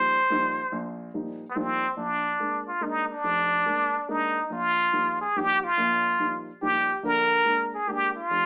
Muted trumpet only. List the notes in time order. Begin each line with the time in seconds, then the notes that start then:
Already playing: C5
1.50 B3
1.55 C4
1.97 D4
2.68 F4
2.83 D#4
3.11 D4
4.10 D#4
4.52 F4
5.21 G#4
5.37 G4
5.64 F4
6.62 G4
7.05 A#4
7.74 G#4
7.88 G4
8.16 F4